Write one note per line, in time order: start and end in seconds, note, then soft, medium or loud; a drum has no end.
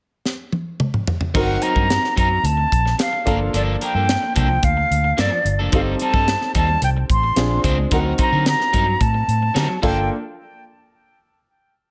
0.26 snare soft
0.52 high tom medium
0.80 mid tom medium
0.94 mid tom medium
1.07 floor tom medium
1.21 floor tom medium
1.34 1.56 G1 medium
1.34 1.56 F#3 medium
1.34 3.22 C4 soft
1.34 1.56 C4 medium
1.34 3.22 D#4 soft
1.34 1.56 D#4 medium
1.34 3.23 F#4 soft
1.34 1.56 A#4 medium
1.34 3.23 A#4 medium
1.34 1.64 F#5 medium
1.34 kick loud
1.34 crash medium
1.62 1.74 F#3 medium
1.62 1.74 C4 medium
1.62 1.74 D#4 medium
1.62 1.74 A#4 medium
1.62 2.17 A#5 medium
1.62 closed hi-hat medium
1.75 1.97 G2 medium
1.75 1.87 F#3 soft
1.75 1.88 C4 soft
1.75 1.88 D#4 soft
1.75 1.88 A#4 medium
1.75 kick medium
1.89 muted clean electric guitar stroke soft
1.89 snare loud
1.89 closed hi-hat medium
2.02 muted clean electric guitar stroke soft
2.02 snare soft
2.16 2.38 F#2 medium
2.16 2.38 F#3 medium
2.16 2.29 C4 medium
2.16 2.29 D#4 medium
2.16 2.29 A#4 medium
2.16 2.47 A#5 medium
2.16 kick medium
2.16 closed hi-hat medium
2.30 muted clean electric guitar stroke soft
2.43 2.65 D2 medium
2.43 3.00 A5 medium
2.43 muted clean electric guitar stroke soft
2.43 closed hi-hat medium
2.57 muted clean electric guitar stroke soft
2.72 2.93 A#1 medium
2.72 kick medium
2.72 closed hi-hat medium
2.85 muted clean electric guitar stroke soft
2.85 snare soft
2.98 3.38 F5 medium
2.98 muted clean electric guitar stroke soft
2.98 snare loud
2.98 closed hi-hat medium
3.13 muted clean electric guitar stroke soft
3.25 3.47 G1 medium
3.25 3.48 F3 medium
3.25 5.41 A#3 medium
3.25 3.40 A#3 medium
3.25 5.41 D4 medium
3.25 3.40 D4 medium
3.25 5.41 F4 medium
3.25 5.42 A4 medium
3.25 3.40 A#4 medium
3.25 kick medium
3.25 closed hi-hat medium
3.41 muted clean electric guitar stroke soft
3.53 3.74 G1 loud
3.53 3.75 F3 medium
3.53 3.75 A#3 medium
3.53 3.75 D4 medium
3.53 3.75 A4 medium
3.53 3.62 D5 medium
3.53 closed hi-hat medium
3.81 3.96 F3 medium
3.81 3.95 A#3 medium
3.81 3.95 D4 medium
3.81 3.95 A#4 medium
3.81 4.33 G5 medium
3.81 closed hi-hat medium
3.94 4.15 G2 medium
3.94 4.08 F3 soft
3.94 4.08 A#3 medium
3.94 4.09 D4 soft
3.94 4.09 A4 medium
4.09 muted clean electric guitar stroke soft
4.09 snare loud
4.09 closed hi-hat medium
4.23 muted clean electric guitar stroke soft
4.35 4.57 C2 medium
4.35 4.57 F3 medium
4.35 4.49 A#3 medium
4.35 4.48 D4 medium
4.35 4.48 A4 medium
4.35 4.66 G5 medium
4.35 kick medium
4.35 closed hi-hat medium
4.50 muted clean electric guitar stroke soft
4.63 4.84 D2 medium
4.63 5.22 F5 medium
4.63 muted clean electric guitar stroke soft
4.63 kick medium
4.63 closed hi-hat medium
4.77 muted clean electric guitar stroke soft
4.91 5.11 D2 medium
4.91 closed hi-hat medium
5.04 muted clean electric guitar stroke soft
5.17 5.29 G2 medium
5.17 5.39 F3 medium
5.17 5.31 A#3 medium
5.17 5.31 D4 medium
5.17 5.31 A4 medium
5.17 5.60 D5 medium
5.17 snare loud
5.17 closed hi-hat medium
5.32 muted clean electric guitar stroke soft
5.45 5.59 G1 medium
5.45 muted clean electric guitar stroke soft
5.45 closed hi-hat medium
5.59 5.69 F#1 medium
5.59 5.73 F3 medium
5.59 5.73 A#3 soft
5.59 5.74 D4 medium
5.59 5.73 A4 medium
5.72 5.93 G1 medium
5.72 5.94 G3 medium
5.72 7.33 C4 medium
5.72 5.94 C4 medium
5.72 7.34 D#4 soft
5.72 5.95 D#4 medium
5.72 7.34 G4 soft
5.72 5.95 A4 medium
5.72 7.35 A4 medium
5.72 5.81 F5 medium
5.72 kick loud
5.72 closed hi-hat medium
5.99 6.14 G3 medium
5.99 6.14 C4 medium
5.99 6.13 D#4 medium
5.99 6.13 A4 medium
5.99 6.52 A5 loud
5.99 closed hi-hat medium
6.14 6.34 G2 medium
6.14 6.27 G3 soft
6.14 6.27 C4 soft
6.14 6.27 D#4 medium
6.14 6.28 A4 medium
6.14 kick medium
6.28 muted clean electric guitar stroke soft
6.28 snare medium
6.28 closed hi-hat medium
6.41 muted clean electric guitar stroke soft
6.41 snare soft
6.55 6.76 D#2 loud
6.55 6.76 G3 medium
6.55 6.69 C4 medium
6.55 6.69 D#4 medium
6.55 6.68 A4 medium
6.55 6.81 A5 medium
6.55 kick medium
6.55 closed hi-hat medium
6.69 muted clean electric guitar stroke soft
6.82 7.03 C2 medium
6.82 6.90 G5 medium
6.82 muted clean electric guitar stroke soft
6.82 closed hi-hat medium
6.97 muted clean electric guitar stroke medium
7.09 7.30 A1 medium
7.09 7.62 C6 medium
7.09 kick medium
7.09 closed hi-hat medium
7.23 muted clean electric guitar stroke soft
7.36 7.57 A#1 medium
7.36 7.89 C4 medium
7.36 7.91 D4 medium
7.36 7.92 F4 medium
7.36 7.92 G#4 medium
7.36 muted clean electric guitar stroke soft
7.36 snare loud
7.36 closed hi-hat medium
7.51 muted clean electric guitar stroke soft
7.64 7.85 C#2 medium
7.64 7.85 G#3 medium
7.64 7.79 C4 medium
7.64 7.78 D4 medium
7.64 7.78 C5 medium
7.64 kick medium
7.64 closed hi-hat medium
7.79 muted clean electric guitar stroke soft
7.91 8.12 D2 loud
7.91 8.13 F#3 medium
7.91 9.79 C4 medium
7.91 8.13 C4 medium
7.91 9.80 D#4 soft
7.91 8.13 D#4 medium
7.91 9.80 F#4 soft
7.91 8.13 A#4 medium
7.91 9.80 A#4 medium
7.91 8.00 F#5 medium
7.91 kick loud
7.91 closed hi-hat medium
8.18 8.32 F#3 medium
8.18 8.32 C4 medium
8.18 8.32 D#4 medium
8.18 8.32 C5 medium
8.18 8.45 A#5 loud
8.18 kick medium
8.18 closed hi-hat medium
8.32 8.53 D3 medium
8.32 8.45 F#3 soft
8.32 8.45 C4 medium
8.32 8.46 D#4 soft
8.32 8.46 A#4 medium
8.46 9.03 A#5 loud
8.46 muted clean electric guitar stroke soft
8.46 snare loud
8.46 closed hi-hat medium
8.60 muted clean electric guitar stroke soft
8.60 snare soft
8.73 8.95 G2 medium
8.73 8.94 F#3 medium
8.73 8.87 C4 medium
8.73 8.87 D#4 medium
8.73 8.86 A#4 medium
8.73 kick medium
8.73 closed hi-hat medium
8.87 muted clean electric guitar stroke soft
9.00 9.22 A2 medium
9.00 9.83 A5 medium
9.00 muted clean electric guitar stroke soft
9.00 kick medium
9.00 closed hi-hat medium
9.14 muted clean electric guitar stroke soft
9.28 9.49 A2 medium
9.28 closed hi-hat medium
9.42 muted clean electric guitar stroke soft
9.54 9.66 D3 loud
9.54 9.76 F#3 medium
9.54 9.69 C4 medium
9.54 9.68 D#4 medium
9.54 9.68 A#4 medium
9.54 snare medium
9.54 closed hi-hat medium
9.69 muted clean electric guitar stroke soft
9.82 10.09 G1 medium
9.82 9.99 F3 medium
9.82 9.99 A#3 medium
9.82 10.09 A#3 medium
9.82 9.99 D4 medium
9.82 10.09 D4 medium
9.82 10.09 F4 medium
9.82 10.08 A4 medium
9.82 10.00 A4 medium
9.82 10.09 G5 medium
9.82 kick medium
9.82 crash medium